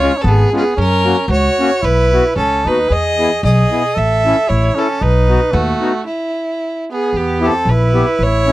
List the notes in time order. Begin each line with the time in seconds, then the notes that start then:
Already playing: F4 C#5
0.01 G#3 C#4 F4
0.17 C#4 A4
0.24 G#1 B3 G#4
0.52 G#3 B3 C#4 F4
0.56 G#4
0.76 F#2 C#4 A#4
1.04 A#3 C#4 F#4
1.28 C#2 F#4 C#5
1.59 A#3 C#4 F#4
1.82 B1 E4 B4
2.12 B3 E4 F#4
2.35 C#2 C#4 A4
2.65 D#2 B3 D#4 F#4 B4
2.89 E2 G#4 D#5
3.18 B3 E4 G#4
3.43 B1 G#4 D#5
3.71 B3 E4 G#4
3.94 A1 A4 E5
4.25 C#4 E4 A4
4.48 A1 E4 C#5
4.75 C#4 E4 A4
5.01 B1 D#4 B4
5.28 B3 D#4 F#4
5.52 D#2 A3 F#4
5.80 B3 D#4 F#4
6.06 E4
6.91 B3 G#4
7.13 E2 G4
7.17 B3
7.40 B3 E4 G4
7.45 C4 A4
7.65 A#1 B4
7.71 E4
7.93 B3 E4 G4
8.19 A1 C#5
8.23 E4
8.46 A3 C#4 E4